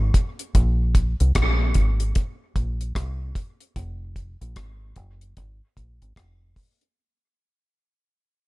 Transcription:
Already playing: G#1
0.14 kick, closed hi-hat
0.39 closed hi-hat
0.55 A#1, kick, closed hi-hat
0.95 kick, closed hi-hat
1.20 C2, closed hi-hat
1.35 A#1, kick, cross-stick, closed hi-hat
1.74 G#1, kick, closed hi-hat
2.00 closed hi-hat
2.15 kick, closed hi-hat
2.56 A#1, kick, closed hi-hat
2.81 closed hi-hat
2.95 C2, kick, cross-stick, closed hi-hat
3.35 kick, closed hi-hat
3.61 closed hi-hat
3.76 F1, kick, closed hi-hat
4.16 kick, closed hi-hat
4.41 A#1, closed hi-hat
4.56 G#1, kick, cross-stick, closed hi-hat
4.96 F#1, kick, closed hi-hat
5.21 closed hi-hat
5.37 G#1, kick, closed hi-hat
5.77 A#1, kick, closed hi-hat
6.02 G#1, closed hi-hat
6.16 F1, kick, cross-stick, closed hi-hat
6.56 kick, open hi-hat
6.81 closed hi-hat

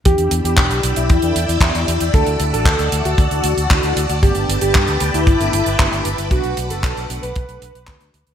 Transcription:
0.05 E2 B3 D4 E4 G4 D5 G5 B5 E6, kick, closed hi-hat
0.18 E2, closed hi-hat
0.31 E2, closed hi-hat
0.44 E2 B3 D4 E4 G4, closed hi-hat
0.57 E1, kick, clap, closed hi-hat
0.70 B1, closed hi-hat
0.83 B1 B3 D4 E4 G4, closed hi-hat
0.96 B1 E4, closed hi-hat
1.10 E2, kick, closed hi-hat
1.22 E2 B3 D4 E4 A4, closed hi-hat
1.36 E2, closed hi-hat
1.49 E2, closed hi-hat
1.61 E2 B3 D4 E4 G4, kick, clap, closed hi-hat
1.75 E2, closed hi-hat
1.88 E2, closed hi-hat
2.00 E2, closed hi-hat
2.14 D2 A3 D4 E4 F#4 A4 F#5 A5, kick, closed hi-hat
2.27 D2, closed hi-hat
2.40 D2, closed hi-hat
2.53 A1 A3 D4 E4 F#4 A4, closed hi-hat
2.65 D2, kick, clap, closed hi-hat
2.79 D2, closed hi-hat
2.92 D2 A3 D4 E4 F#4, closed hi-hat
3.05 D2 F#4, closed hi-hat
3.18 D2, kick, closed hi-hat
3.31 D2 A3 D4 E4 A4, closed hi-hat
3.44 D2, closed hi-hat
3.57 D2, closed hi-hat
3.70 D2 A3 D4 E4 F#4, kick, clap, closed hi-hat
3.83 D2, closed hi-hat
3.96 D2, closed hi-hat
4.10 D2, closed hi-hat
4.23 G1 A3 B3 D4 G4 B4 G5 D6, kick, closed hi-hat
4.35 G1, closed hi-hat
4.49 G1, closed hi-hat
4.61 G1 A3 B3 D4 G4, closed hi-hat
4.75 G2, kick, clap, closed hi-hat
4.88 D2, closed hi-hat
5.00 D2 A3 B3 D4 G4, closed hi-hat
5.14 D2 E4, closed hi-hat
5.27 G1, kick, closed hi-hat
5.40 G1 A3 B3 D4 A4, closed hi-hat
5.53 G1, closed hi-hat
5.66 G1, closed hi-hat
5.79 G1 A3 B3 D4 G4, kick, clap, closed hi-hat
5.92 G1, closed hi-hat
6.05 G1, closed hi-hat
6.18 G1, closed hi-hat
6.31 B1 A3 B3 D4 F#4 F#5, kick, closed hi-hat
6.44 B1, closed hi-hat
6.57 B1, closed hi-hat
6.70 F#1 A3 B3 D4 F#4 A4, closed hi-hat
6.83 B1, kick, clap, closed hi-hat
6.97 B1, closed hi-hat
7.09 B1 A3 B3 D4 F#4, closed hi-hat
7.22 B1 B4, closed hi-hat
7.36 B1, kick, closed hi-hat
7.49 B1 A3 B3 D4 A4, closed hi-hat
7.62 B1, closed hi-hat
7.75 B1, closed hi-hat
7.87 D2 A3 B3 D4 F#4, kick, clap, closed hi-hat
8.01 D2, closed hi-hat
8.14 D2, closed hi-hat
8.27 D2, closed hi-hat

